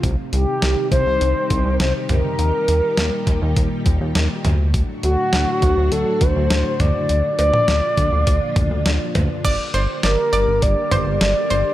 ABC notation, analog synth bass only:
X:1
M:4/4
L:1/16
Q:1/4=102
K:Gm
V:1 name="Analog synth bass" clef=bass
C,, z C,, z C,, z C,, C,, C,, z C,, C,, C,, z C,, z | E,, z E,, z E,, z E,, E,, E,, z E,, E,, E,, z D,,2- | D,, z D,, z D,, z D,, D,, D,, z D,, D,, D,, z D,, z | D,, z D,, z D,, z D,, D,, D,, z D,, D,, D,, z D,, z |
G,,, z G,,, z G,,, z G,,, G,,, G,,, z G,,, G,,, G,,, z G,,, z |]